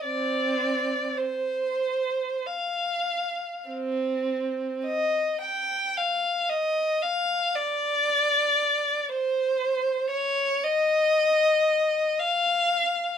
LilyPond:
\new Staff \with { instrumentName = "Violin" } { \time 3/4 \key c \minor \tempo 4 = 57 <c' d''>4 c''4 f''4 | c'4 ees''8 g''8 f''8 ees''8 | f''8 d''4. c''4 | \key ees \mixolydian des''8 ees''4. f''4 | }